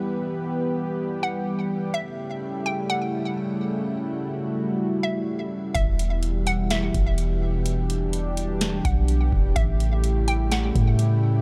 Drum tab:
HH |--------|--------|--------|xxxxxxx-|
SD |--------|--------|--------|----o---|
BD |--------|--------|--------|o----o--|

HH |xxxxxxx-|xxxxxxx-|
SD |----o---|----o---|
BD |-----o-o|o----o--|